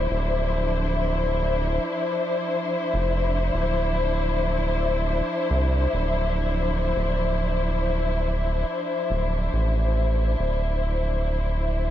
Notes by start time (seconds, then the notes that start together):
Already playing: F3 D4 E4 C5
0.11 D1
2.94 F1
3.54 D1
5.51 C2
5.93 D1
6.96 D1
9.10 D1
9.53 A1
10.39 D1